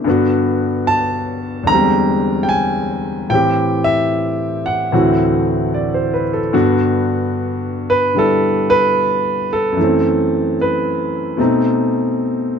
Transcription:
0.04 G2 D3 B3
0.10 F#4
0.87 A5
1.64 E2 D3 A#5
1.69 G#3 C4
1.74 G3
2.43 G5
2.49 G#5
3.30 A2 E3 C4 G5
3.35 G4
3.84 E5
4.66 F#5
4.92 D2 A2 E3 A3 C4 F#4
5.74 D5
5.94 C5
6.13 B4
6.33 A4
6.53 G2 D3 B3 F#4
7.90 B4
8.15 D3 G3 E4 A4
8.70 B4
9.53 A4
9.72 F#2
9.77 E3 A3
9.84 C4
10.61 B4
11.37 B2 A3 C4
11.41 D#4

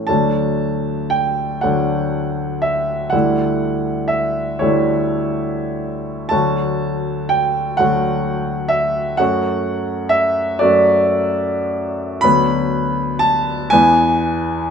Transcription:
Already playing: A3
0.07 D2 F#3 A3 D4 A5
1.10 G5
1.61 D2 F#3 A3 D4 F#5
2.62 E5
3.10 D2 G3 A3 E4 F#5
4.08 E5
4.59 D2 G3 A3 E4 C#5
6.29 D2 F#3 A3 F#4 A5
7.29 G5
7.77 D2 F#3 A3 F#4 F#5
8.69 E5
9.17 F#2 F#3 A3 F#4 F#5
10.09 E5
10.59 F#2 F#3 A3 F#4 D5
12.21 D2 F#3 B3 B4 B5
13.19 A5
13.70 E2 E3 B3 B4 G#5

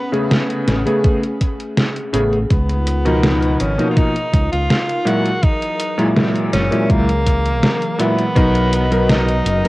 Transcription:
Already playing: A3 B3 C#4 G#4
0.12 C#3 A3 B3 G#4, closed hi-hat
0.31 snare, closed hi-hat
0.50 closed hi-hat
0.67 A1, snare, closed hi-hat
0.86 C#3 A3 B3 G#4, closed hi-hat
1.04 kick, closed hi-hat
1.23 closed hi-hat
1.41 kick, closed hi-hat
1.60 closed hi-hat
1.77 snare, closed hi-hat
1.96 closed hi-hat
2.13 A1 C#3 A3 B3 G#4, closed hi-hat
2.33 closed hi-hat
2.50 C#2 C#3 B3 D#4 F4 A#4, kick, closed hi-hat
2.69 closed hi-hat
2.87 closed hi-hat
3.05 B2 F3 D#4 A#4, closed hi-hat
3.23 snare, closed hi-hat
3.42 closed hi-hat
3.60 G#1 C#4, closed hi-hat
3.78 B2 F3 A#3 D#4, closed hi-hat
3.91 F4
3.97 D#4, kick, closed hi-hat
4.16 closed hi-hat
4.33 C#2, kick, closed hi-hat
4.52 C#2 F4, closed hi-hat
4.70 snare, closed hi-hat
4.89 closed hi-hat
5.05 A#2 E3 F#3 G#3 E4 F#4 G#4, closed hi-hat
5.26 closed hi-hat
5.43 D#4, kick, closed hi-hat
5.62 closed hi-hat
5.80 closed hi-hat
5.98 A#2 F#3 G#3 E4, closed hi-hat
6.17 snare, closed hi-hat
6.36 closed hi-hat
6.53 F#1 C#4, snare, closed hi-hat
6.71 A#2 F#3 G#3 E4, closed hi-hat
6.90 C#2 A#3, kick, closed hi-hat
7.09 closed hi-hat
7.26 kick, closed hi-hat
7.46 closed hi-hat
7.63 snare, closed hi-hat
7.82 closed hi-hat
7.98 A#2 F#3 G#3 B3 E4, closed hi-hat
8.18 closed hi-hat
8.35 B1 F#3 B3 D#4 F#4 A#4 D#5, kick, closed hi-hat
8.55 closed hi-hat
8.73 closed hi-hat
8.91 F#3 B3 D#4 A#4, closed hi-hat
9.09 D#4, snare, closed hi-hat
9.29 closed hi-hat
9.46 F#1, closed hi-hat
9.64 F#3 B3 D#4

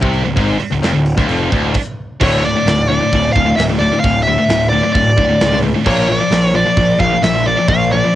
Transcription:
0.01 C2 C3, kick
0.14 open hi-hat
0.25 D1 D2
0.36 G#1 G#2, kick, open hi-hat
0.59 muted distorted electric guitar stroke, muted picked electric bass stroke, open hi-hat
0.71 D1 D2
0.82 F1 F2, snare, open hi-hat
0.92 D1 D2
1.06 open hi-hat
1.17 D1 D2, kick, snare
1.28 F1 F2, open hi-hat
1.52 D1 D2, kick, open hi-hat
1.74 kick, crash
2.21 D1 D2 A2 D3 C#5, kick, crash
2.44 D2 A2 D5
2.55 D2 A2
2.66 D1 D2 A2, snare, open hi-hat
2.89 D2 A2 D5
3.01 D2 A2
3.13 D1 D2 A2, kick, open hi-hat
3.33 D1 D2 A2 F5, kick
3.45 D2 A2
3.56 D1 D2 A2 E5, snare, open hi-hat
3.70 D2 A2
3.79 D2 A2 D5
3.93 D2 A2
4.00 F5, open hi-hat
4.04 D1 D2 A2, kick
4.23 E5
4.27 D2 A2
4.38 D2 A2
4.49 D1 D2 A2, snare, open hi-hat
4.69 D2 A2 D5
4.83 D2 A2
4.93 D1 D2 A2 D5, kick, open hi-hat
5.17 D1 D2 A2, kick
5.30 D2 A2
5.40 C#2 D2 A2, snare, open hi-hat
5.53 D2 A2
5.64 D2 A2
5.75 D2 A2
5.85 A#1 A#2 F3 A#3 C#5, kick, crash
6.09 A#2 F3 D5
6.20 A#2 F3
6.31 A#1 A#2 F3, snare, open hi-hat
6.54 A#2 F3 D5
6.66 A#2 F3
6.77 A#1 A#2 F3, kick, open hi-hat
6.99 A#1 A#2 F3 F5, kick
7.12 A#2 F3
7.22 A#1 A#2 F3 E5, snare, open hi-hat
7.35 A#2 F3
7.47 A#2 F3 D5
7.58 A#2 F3
7.68 A#1 A#2 F3 F5, kick, open hi-hat
7.92 A#2 F3 D5
8.04 A#2 F3

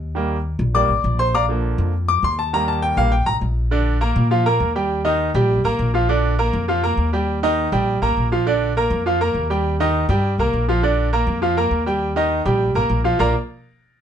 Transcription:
Already playing: D#2
0.15 D#3 G3 A#3
0.59 A#1
0.74 D#3 G3 A#3 D5 D6
0.89 A1
1.04 A#1
1.19 C5 C6
1.35 D5 F5 A#5 D6
1.49 D3 F3 A#3
1.78 F2
2.08 D6
2.23 D#2 C6
2.39 A5
2.53 D#3 G3 A#3 A#5
2.68 A5
2.82 G5
2.97 A#1 D#3 G3 A#3 F5
3.12 G5
3.26 A1 A#5
3.41 A#1
3.71 D3 D4 D5
4.01 A#3 A#4 A#5
4.16 A#2
4.31 F3 F4 F5
4.46 A#3 A#4 A#5
4.60 D#2
4.75 G3 G4 G5
5.05 D#3 D#4 D#5
5.34 A#1 G3 G4 G5
5.64 A1 A#3 A#4 A#5
5.79 A#1
5.94 F3 F4 F5
6.09 D3 D4 D5
6.39 A#3 A#4 A#5
6.53 F2
6.68 F3 F4 F5
6.83 A#3 A#4 A#5
6.97 D#2
7.13 G3 G4 G5
7.43 D#3 D#4 D#5
7.72 A#1 G3 G4 G5
8.02 A1 A#3 A#4 A#5
8.17 A#1
8.32 F3 F4 F5
8.46 D3 D4 D5
8.77 A#3 A#4 A#5
8.90 F2
9.06 F3 F4 F5
9.21 A#3 A#4 A#5
9.35 D#2
9.50 G3 G4 G5
9.80 D#3 D#4 D#5
10.09 G2 G3 G4 G5
10.38 C2 A#3 A#4 A#5
10.53 A#1
10.69 F3 F4 F5
10.83 D3 D4 D5
11.13 A#3 A#4 A#5
11.27 F2
11.42 F3 F4 F5
11.57 A#3 A#4 A#5
11.71 D#2
11.86 G3 G4 G5
12.16 D#3 D#4 D#5
12.45 A#1 G3 G4 G5
12.75 A1 A#3 A#4 A#5
12.89 A#1
13.04 F3 F4 F5
13.19 A#1 A#3 F4 A#4 D5 F5 A#5

